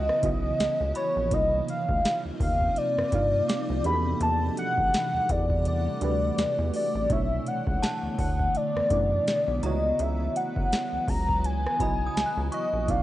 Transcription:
Already playing: C#3 E3 F#3 B3 E4 F#4 C#5 D#5, downlifter
0.09 cross-stick
0.22 B1 C#3 B3 E4 F#4 D#5, kick, closed hi-hat
0.59 C#2, snare, closed hi-hat
0.81 C#2
0.95 C#5 B5, closed hi-hat
1.16 A#1
1.30 C2 C3 F3 A#3 C4 D#4 F4 D#5, kick, closed hi-hat
1.68 F5, closed hi-hat
1.89 D2, kick
2.05 snare, closed hi-hat
2.25 D#2
2.40 D#2 F5, kick, open hi-hat
2.61 kick
2.76 D5, closed hi-hat
2.97 G2, cross-stick
3.11 G2 C3 A#3 D#4 F4 F5, kick, closed hi-hat
3.48 D6, snare, closed hi-hat
3.70 C2
3.83 E2 E3 G3 A3 D4 F#4 G4 G#4 F#5 B5, closed hi-hat
3.93 A4
4.20 E2 A5, closed hi-hat
4.57 F#5, closed hi-hat
4.78 A1, kick
4.94 snare, closed hi-hat
5.14 E2
5.29 E2 D5, kick, closed hi-hat
5.50 kick
5.65 D5, closed hi-hat
6.00 D2 E3 D4 F#4 G4 B4, closed hi-hat
6.38 E2, snare, closed hi-hat
6.58 E2
6.74 D5, open hi-hat
6.95 A1
7.09 B1 B2 D3 A3 B3 D4 E4 C#5 E5, kick, closed hi-hat
7.47 F#5, closed hi-hat
7.67 C#2, kick
7.83 A5, snare, closed hi-hat
8.03 D2
8.18 D2 F#5, kick, open hi-hat
8.39 kick
8.55 D5, closed hi-hat
8.76 F#2, cross-stick
8.90 F#2 B2 A3 D4 E4 D5, kick, closed hi-hat
9.28 snare, closed hi-hat
9.48 B1
9.62 C#2 C#3 F#3 B3 E4 F#4 D#5 A#5, closed hi-hat
9.66 C#5
9.99 C#2 E5, closed hi-hat
10.36 F#5, closed hi-hat
10.56 F#1, kick
10.72 snare, closed hi-hat
10.92 C#2
11.08 C#2 A#5, kick, open hi-hat
11.29 kick
11.44 G#5, closed hi-hat
11.66 cross-stick
11.78 B1 C#3 B3 E4 F#4 D#5 B5, kick, closed hi-hat
12.07 D#6
12.16 C#2, snare, closed hi-hat
12.26 F#6
12.37 C#2
12.52 D#5 C#6, closed hi-hat
12.73 A#1
12.87 C2 C3 A#3 D#4 F4 D5 F5, kick, closed hi-hat

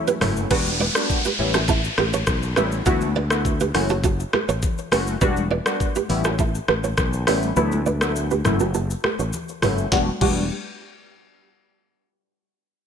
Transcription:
Already playing: F#3 A3 C#4 E4
0.07 G4 B4, shaker
0.21 F#1 F#3 A3 C#4 E4 A4 C#5, cross-stick, mid tom, open hi-hat, high conga, shaker
0.37 shaker
0.51 E1 G3 B3 D4 F#4 G4 B4, kick, crash, downlifter, low conga, shaker
0.66 high conga, shaker
0.80 B4 D5, high conga
0.95 G3 B3 D4 F#4, cross-stick, shaker
1.10 kick, shaker
1.25 G4 B4, high conga, shaker
1.39 A1 G3 B3 C#4 E4, low conga
1.54 F#4 A4, cross-stick, shaker
1.68 E4 A4, kick, shaker
1.84 shaker
1.98 A1 G4 B4, cross-stick, high conga
2.13 A4 C#5, shaker
2.27 B1, kick, cross-stick, low conga, shaker
2.43 shaker
2.56 A1 G3 B3 C#4 E4 G4 B4, cross-stick, high conga, shaker
2.72 shaker
2.86 D2 A3 B3 E4 F#4 B4, kick, low conga, shaker
3.01 high conga, shaker
3.16 B4 D5, high conga
3.30 A3 B3 E4 F#4, cross-stick, shaker
3.45 kick, shaker
3.60 G4 B4, high conga, shaker
3.74 F#1 A3 C#4 E4 F#4, cross-stick, open hi-hat, low conga
3.89 F#4 A4, shaker
4.04 F#4 A4, kick, shaker
4.20 shaker
4.33 G4 B4, cross-stick, high conga
4.48 A1 A4 C#5, shaker
4.62 kick, low conga, shaker
4.78 shaker
4.92 F#1 A3 C#4 E4 F#4 G4 B4, cross-stick, open hi-hat, high conga, shaker
5.07 shaker
5.21 E1 G3 B3 D4 F#4 G4 B4, kick, low conga, shaker
5.37 high conga, shaker
5.51 B4 D5, high conga
5.66 G3 B3 D4 F#4, cross-stick, shaker
5.80 kick, shaker
5.95 G4 B4, high conga, shaker
6.09 A1 G3 B3 C#4 E4, open hi-hat, low conga
6.24 F#4 A4, cross-stick, shaker
6.39 E4 A4, kick, shaker
6.55 shaker
6.68 A1 G4 B4, cross-stick, high conga
6.84 A4 C#5, shaker
6.97 B1, kick, cross-stick, low conga, shaker
7.13 shaker
7.27 A1 G3 B3 C#4 E4 G4 B4, cross-stick, open hi-hat, high conga, shaker
7.42 shaker
7.56 D2 F#3 A3 B3 E4 F#4 B4, low conga, shaker
7.72 high conga, shaker
7.86 B4 D5, high conga, shaker
8.01 F#3 A3 B3 E4, cross-stick, shaker
8.16 shaker
8.31 G4 B4, high conga, shaker
8.44 F#1 F#3 A3 C#4 E4, cross-stick, mid tom, low conga, shaker
8.60 F#4 A4, shaker
8.74 F#4 A4, shaker
8.90 shaker
9.04 G4 B4, cross-stick, high conga
9.19 A1 A4 C#5, shaker
9.33 low conga, shaker
9.49 shaker
9.62 F#1 F#3 A3 C#4 E4 G4 B4, cross-stick, mid tom, open hi-hat, high conga, shaker
9.78 shaker
9.91 E1 G3 B3 D4 F#4 G4, kick, snare, high conga
10.21 E1 G3 B3 D4 F#4 G4, kick, crash, high conga

